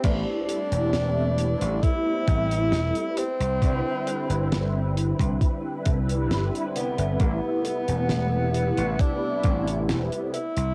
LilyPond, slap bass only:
\new Staff \with { instrumentName = "Slap bass" } { \clef bass \time 4/4 \key a \minor \tempo 4 = 67 a,,16 r8 e,,4 a,,16 r8 a,,8 e,,16 r8 c,16 | c,16 r8 g,,4 c,16 r8 c,8 g,,16 r8 g,,16 | a,,16 r8 e,,4 a,,16 r8 a,,8 e,,16 r8 c,16 | }